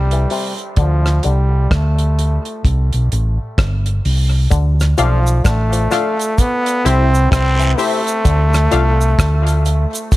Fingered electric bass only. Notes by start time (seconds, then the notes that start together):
Already playing: C2
0.77 D2
1.25 C2
1.71 D2
2.65 C2
2.94 B1
3.12 A1
3.58 G1
4.05 C2
4.52 D2
4.99 B1
5.45 A1
6.86 C2
7.32 C2
8.26 D2
8.73 C2
9.19 D2